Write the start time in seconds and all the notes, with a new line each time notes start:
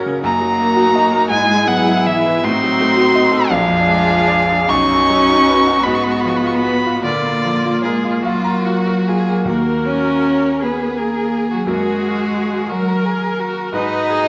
Already playing: F#2 C#3 A#3 C#4 F#4 A#4 C#5 F#5 C#6
0.06 C#3
0.21 F#2 A#3 D#4 F#4 A#5
0.41 F#3
0.60 A#3
0.76 F#4
0.95 D#5
1.12 A#4
1.28 G#2 G#3 E4 G#4 G#5
1.49 G#3
1.66 F#3 B3 F#5
1.87 E4
2.06 E3 E5
2.26 B4
2.44 A2 C4 D#4 F#4 C6
2.63 F#3
2.81 A3
2.97 F#4
3.15 D#5
3.32 A4
3.50 A#1 F3 D4 G#4 F5
3.68 F2
3.88 G#3
4.09 F4
4.28 D5
4.50 G#4
4.69 B1 C#4 D#4 F#4 C#6
4.90 F#2
5.10 F#3
5.29 D#4
5.49 B4
5.67 F#4
5.83 G#2 B3 B5
5.95 C#6
6.04 G#3 B5
6.11 C#6
6.21 B5
6.26 F3 C#6
6.37 B5
6.45 F4 C#6
6.54 B5
6.65 B4
6.86 F4
7.04 A#2 D3 A#3 F4 D5
7.26 A#3
7.45 F3
7.65 F4
7.84 G#3 G#4 A#4
8.04 F4
8.22 F#3 F4 F#4 F5
8.44 A#5
8.66 F4 F#4
8.87 A#4
9.08 F4 G#4
9.29 A#3
9.45 D#2 A#3 F#4 A#4
9.85 C#4 C#5
10.61 B3 G#4 B4
10.98 A#3 A#4
11.51 F#3 F#4
11.66 F#2 G#3 A#3 F#4 G#4 A#4
12.70 F#3 F#4 A#4
13.05 G#4
13.40 F#4
13.73 G#2 G#3 D#4 F#4 B4 D#5
14.10 G#4